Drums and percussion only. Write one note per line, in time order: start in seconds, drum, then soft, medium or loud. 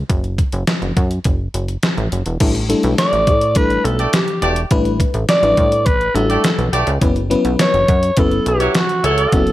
0.10 kick loud
0.10 closed hi-hat medium
0.24 closed hi-hat soft
0.38 kick medium
0.38 closed hi-hat medium
0.52 closed hi-hat medium
0.67 snare loud
0.67 closed hi-hat medium
0.82 closed hi-hat soft
0.97 kick medium
0.97 closed hi-hat medium
1.11 closed hi-hat soft
1.24 kick loud
1.24 closed hi-hat medium
1.54 closed hi-hat medium
1.68 closed hi-hat soft
1.83 snare loud
1.83 closed hi-hat medium
1.98 closed hi-hat soft
2.12 closed hi-hat medium
2.26 closed hi-hat medium
2.40 kick loud
2.40 closed hi-hat medium
2.40 crash loud
2.55 closed hi-hat soft
2.70 closed hi-hat medium
2.83 closed hi-hat medium
2.98 snare loud
2.98 closed hi-hat medium
3.13 closed hi-hat soft
3.27 kick loud
3.27 closed hi-hat medium
3.41 closed hi-hat soft
3.55 kick loud
3.55 closed hi-hat medium
3.70 closed hi-hat soft
3.85 closed hi-hat medium
3.99 closed hi-hat medium
4.13 snare loud
4.13 closed hi-hat loud
4.28 closed hi-hat soft
4.42 closed hi-hat medium
4.56 closed hi-hat medium
4.71 kick loud
4.71 closed hi-hat medium
4.85 closed hi-hat soft
5.00 kick loud
5.00 closed hi-hat medium
5.14 closed hi-hat medium
5.29 snare loud
5.29 closed hi-hat medium
5.43 closed hi-hat soft
5.57 kick loud
5.57 closed hi-hat medium
5.72 closed hi-hat medium
5.86 kick loud
5.86 closed hi-hat medium
6.01 closed hi-hat soft
6.16 closed hi-hat medium
6.30 closed hi-hat medium
6.44 snare loud
6.44 closed hi-hat loud
6.59 closed hi-hat soft
6.73 closed hi-hat medium
6.87 closed hi-hat medium
7.01 kick loud
7.01 closed hi-hat loud
7.16 closed hi-hat soft
7.31 closed hi-hat medium
7.45 closed hi-hat medium
7.59 snare loud
7.59 closed hi-hat medium
7.74 closed hi-hat soft
7.88 kick loud
7.88 closed hi-hat medium
8.03 closed hi-hat medium
8.17 kick loud
8.17 closed hi-hat medium
8.31 closed hi-hat soft
8.46 closed hi-hat medium
8.60 closed hi-hat medium
8.75 snare loud
8.75 closed hi-hat loud
8.89 closed hi-hat soft
9.04 closed hi-hat medium
9.18 closed hi-hat medium
9.32 kick loud
9.32 closed hi-hat medium
9.47 closed hi-hat soft